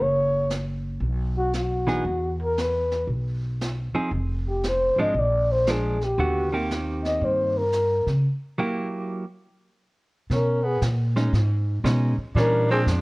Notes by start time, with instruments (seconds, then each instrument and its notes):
Already playing: upright bass F#1
0.02 flugelhorn C#5
0.50 snare, hi-hat pedal
1.01 upright bass B1, brush sweep
1.38 flugelhorn F#4
1.54 flugelhorn F#4, snare, hi-hat pedal
1.87 hollow-body jazz guitar E3 B3 D#4 G#4, snare
2.05 upright bass E2, brush sweep
2.42 flugelhorn A#4
2.57 flugelhorn B4, snare, hi-hat pedal
2.91 snare
3.07 upright bass B1, brush sweep
3.61 snare, hi-hat pedal
3.94 hollow-body jazz guitar F3 C4 D#4 G#4, muted upright bass stroke
4.11 upright bass F1, brush sweep
4.49 flugelhorn G4
4.63 snare, hi-hat pedal
4.68 flugelhorn C5
4.96 upright bass G#1, hollow-body jazz guitar F3 G#3 D4
5.01 flugelhorn D#5
5.14 upright bass A#1, brush sweep
5.19 flugelhorn D5
5.52 flugelhorn C5
5.67 hollow-body jazz guitar F3 G#3 D4, snare, hi-hat pedal
5.71 flugelhorn G#4
6.01 flugelhorn G4, snare
6.18 upright bass D#2, hollow-body jazz guitar D3 A3 B3 F#4, brush sweep
6.52 hollow-body jazz guitar D#3 A#3 C4 G4
6.70 snare, hi-hat pedal
7.04 flugelhorn D#5, snare
7.21 upright bass G2, flugelhorn C5, brush sweep
7.58 flugelhorn A#4
7.72 snare, hi-hat pedal
8.06 upright bass C#3, snare
8.58 hollow-body jazz guitar F#3 A#3 E4 G4
10.30 upright bass B2, tenor saxophone C#4, flugelhorn A#4, brush sweep, snare
10.63 tenor saxophone B3, flugelhorn G#4
10.82 upright bass A#2, snare, hi-hat pedal
11.16 hollow-body jazz guitar G#3 C#4 D#4, snare
11.33 upright bass G#2, brush sweep, snare
11.84 upright bass B2, hollow-body jazz guitar G#3 C#4 D#4, snare, hi-hat pedal
12.17 muted upright bass stroke
12.35 upright bass A#2, hollow-body jazz guitar E3 G3 C#4, tenor saxophone D4, brush sweep, snare
12.39 flugelhorn A#4
12.70 hollow-body jazz guitar F3 G#3 D4, tenor saxophone C4, flugelhorn G#4
12.86 upright bass F2, snare, hi-hat pedal